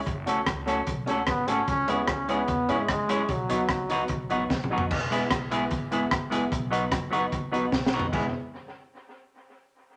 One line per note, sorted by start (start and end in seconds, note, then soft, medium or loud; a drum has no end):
0.07 0.25 F#1 loud
0.07 kick loud
0.07 closed hi-hat medium
0.26 0.44 A1 medium
0.26 0.40 A3 medium
0.26 0.41 C#4 medium
0.26 0.40 C#4 medium
0.26 0.42 F#4 medium
0.26 0.40 F#4 medium
0.26 0.42 A4 medium
0.26 0.40 A4 medium
0.26 0.42 C#5 medium
0.26 closed hi-hat medium
0.45 0.81 C#2 medium
0.45 0.51 A4 soft
0.45 0.51 C#5 soft
0.45 kick loud
0.45 cross-stick loud
0.45 closed hi-hat medium
0.66 0.79 A3 medium
0.66 0.82 C#4 medium
0.66 0.80 C#4 medium
0.66 0.82 F#4 medium
0.66 0.80 F#4 loud
0.66 0.82 A4 medium
0.66 0.81 A4 medium
0.66 0.82 C#5 loud
0.66 closed hi-hat medium
0.87 1.08 B1 loud
0.87 kick loud
0.87 closed hi-hat medium
1.06 1.25 C#2 medium
1.06 1.21 A3 medium
1.06 1.22 C#4 loud
1.06 1.21 C#4 medium
1.06 1.22 F#4 medium
1.06 1.21 F#4 medium
1.06 1.23 A4 medium
1.06 1.23 C#5 loud
1.06 closed hi-hat medium
1.11 1.22 A4 loud
1.27 1.62 G#1 medium
1.27 1.51 B3 loud
1.27 kick loud
1.27 cross-stick loud
1.27 closed hi-hat medium
1.47 1.60 A3 medium
1.47 1.62 C#4 medium
1.47 1.60 C#4 loud
1.47 1.68 C#4 loud
1.47 1.63 F#4 medium
1.47 1.61 F#4 loud
1.47 1.63 A4 medium
1.47 1.61 A4 loud
1.47 1.63 C#5 medium
1.47 closed hi-hat loud
1.68 1.86 C#2 loud
1.68 1.91 C#4 loud
1.68 kick loud
1.68 closed hi-hat medium
1.87 2.08 D#2 medium
1.87 2.00 G#3 medium
1.87 2.10 B3 loud
1.87 2.03 C#4 medium
1.87 2.01 C#4 medium
1.87 2.03 E4 medium
1.87 2.01 E4 medium
1.87 2.03 G#4 medium
1.87 2.01 G#4 medium
1.87 2.03 C#5 loud
1.87 closed hi-hat medium
2.08 2.42 C#2 medium
2.08 2.32 C#4 loud
2.08 2.12 G#4 soft
2.08 2.12 C#5 soft
2.08 kick loud
2.08 cross-stick loud
2.08 closed hi-hat medium
2.28 2.41 G#3 medium
2.28 2.83 B3 loud
2.28 2.43 C#4 medium
2.28 2.41 C#4 medium
2.28 2.44 E4 medium
2.28 2.41 E4 medium
2.28 2.44 G#4 medium
2.28 2.42 G#4 loud
2.28 2.44 C#5 loud
2.28 closed hi-hat medium
2.48 2.71 E2 loud
2.48 kick loud
2.48 closed hi-hat medium
2.68 2.86 G#2 medium
2.68 2.82 G#3 medium
2.68 2.84 C#4 medium
2.68 2.82 C#4 medium
2.68 2.84 E4 medium
2.68 2.82 E4 loud
2.68 2.84 G#4 medium
2.68 2.82 G#4 medium
2.68 2.84 C#5 loud
2.68 closed hi-hat medium
2.81 2.90 G#3 medium
2.88 3.23 F#1 loud
2.88 3.33 G#3 loud
2.88 kick loud
2.88 cross-stick loud
2.88 closed hi-hat medium
3.08 3.21 G#3 medium
3.08 3.22 C#4 loud
3.08 3.24 C#4 medium
3.08 3.22 E4 loud
3.08 3.24 E4 medium
3.08 3.22 G#4 loud
3.08 3.25 G#4 medium
3.08 3.25 C#5 loud
3.08 closed hi-hat medium
3.29 3.47 B1 loud
3.29 4.52 F#3 loud
3.29 kick loud
3.29 closed hi-hat medium
3.49 3.67 D#2 medium
3.49 3.62 F#3 medium
3.49 3.64 B3 medium
3.49 3.62 B3 medium
3.49 3.65 D#4 medium
3.49 3.62 D#4 medium
3.49 3.65 F#4 medium
3.49 3.63 F#4 medium
3.49 3.65 B4 loud
3.49 closed hi-hat medium
3.69 4.04 C#2 medium
3.69 3.74 F#4 soft
3.69 3.74 B4 soft
3.69 kick loud
3.69 cross-stick loud
3.69 closed hi-hat medium
3.89 4.02 F#3 medium
3.89 4.04 B3 medium
3.89 4.03 B3 loud
3.89 4.05 D#4 medium
3.89 4.03 D#4 loud
3.89 4.05 F#4 medium
3.89 4.03 F#4 loud
3.89 4.05 B4 loud
3.89 closed hi-hat medium
4.08 4.28 B1 medium
4.08 kick loud
4.08 closed hi-hat medium
4.30 4.47 A1 loud
4.30 4.42 F#3 medium
4.30 4.45 B3 medium
4.30 4.43 B3 medium
4.30 4.45 D#4 medium
4.30 4.43 D#4 medium
4.30 4.45 F#4 medium
4.30 4.43 F#4 medium
4.30 4.46 B4 loud
4.30 closed hi-hat medium
4.50 4.85 B1 medium
4.50 kick loud
4.50 snare medium
4.64 mid tom medium
4.70 4.83 F#3 medium
4.70 4.85 B3 medium
4.70 4.84 B3 loud
4.70 4.85 D#4 medium
4.70 4.84 D#4 medium
4.70 4.86 F#4 medium
4.70 4.84 F#4 loud
4.70 4.86 B4 medium
4.78 floor tom loud
4.91 5.25 E1 loud
4.91 kick loud
4.91 crash loud
5.10 5.23 G#3 medium
5.10 5.26 B3 medium
5.10 5.24 B3 medium
5.10 5.26 E4 medium
5.10 5.24 E4 medium
5.10 5.24 G#4 medium
5.10 5.27 G#4 medium
5.10 5.27 B4 loud
5.10 closed hi-hat medium
5.31 5.65 B1 medium
5.31 5.35 G#4 soft
5.31 5.35 B4 soft
5.31 kick loud
5.31 cross-stick loud
5.31 closed hi-hat medium
5.51 5.64 G#3 medium
5.51 5.66 B3 medium
5.51 5.64 B3 medium
5.51 5.66 E4 medium
5.51 5.64 E4 medium
5.51 5.66 G#4 medium
5.51 5.64 G#4 loud
5.51 5.67 B4 loud
5.51 closed hi-hat medium
5.71 6.06 G#1 loud
5.71 kick loud
5.71 closed hi-hat medium
5.91 6.04 G#3 medium
5.91 6.06 B3 medium
5.91 6.04 B3 medium
5.91 6.06 E4 medium
5.91 6.04 E4 medium
5.91 6.07 G#4 medium
5.91 6.05 G#4 medium
5.91 6.07 B4 loud
5.91 closed hi-hat medium
6.11 6.46 F#1 medium
6.11 muted clean electric guitar stroke soft
6.11 kick loud
6.11 cross-stick loud
6.11 closed hi-hat medium
6.30 6.43 G#3 medium
6.30 6.44 B3 loud
6.30 6.47 B3 medium
6.30 6.44 E4 loud
6.30 6.47 E4 medium
6.30 6.47 G#4 medium
6.30 6.44 G#4 loud
6.30 6.47 B4 medium
6.30 closed hi-hat loud
6.52 6.86 B1 loud
6.52 kick loud
6.52 closed hi-hat medium
6.71 6.84 F#3 medium
6.71 6.84 B3 medium
6.71 6.87 B3 medium
6.71 6.84 D#4 medium
6.71 6.87 D#4 medium
6.71 6.85 F#4 medium
6.71 6.87 F#4 medium
6.71 6.87 B4 loud
6.71 closed hi-hat medium
6.91 7.26 F#1 loud
6.91 6.97 F#4 soft
6.91 6.96 B4 soft
6.91 kick loud
6.91 cross-stick loud
6.91 closed hi-hat medium
7.11 7.24 F#3 medium
7.11 7.24 B3 medium
7.11 7.27 B3 medium
7.11 7.25 D#4 medium
7.11 7.27 D#4 medium
7.11 7.25 F#4 loud
7.11 7.28 F#4 medium
7.11 7.28 B4 loud
7.11 closed hi-hat medium
7.32 7.67 D#2 medium
7.32 kick loud
7.32 closed hi-hat medium
7.52 7.64 F#3 medium
7.52 7.67 B3 loud
7.52 7.65 B3 medium
7.52 7.67 D#4 medium
7.52 7.65 D#4 medium
7.52 7.68 F#4 medium
7.52 7.65 F#4 medium
7.52 7.68 B4 loud
7.52 closed hi-hat medium
7.71 8.07 B1 loud
7.71 muted clean electric guitar stroke medium
7.71 kick loud
7.71 snare medium
7.86 snare medium
7.92 8.05 F#3 medium
7.92 8.05 B3 medium
7.92 8.08 B3 medium
7.92 8.06 D#4 medium
7.92 8.08 D#4 medium
7.92 8.06 F#4 medium
7.92 8.09 F#4 medium
7.92 8.09 B4 medium
8.00 floor tom loud
8.12 8.33 E1 loud
8.12 8.25 G#3 medium
8.12 8.28 B3 medium
8.12 8.25 B3 medium
8.12 8.29 E4 medium
8.12 8.26 E4 medium
8.12 8.29 G#4 medium
8.12 8.26 G#4 medium
8.12 8.29 B4 medium
8.12 kick loud
8.12 crash medium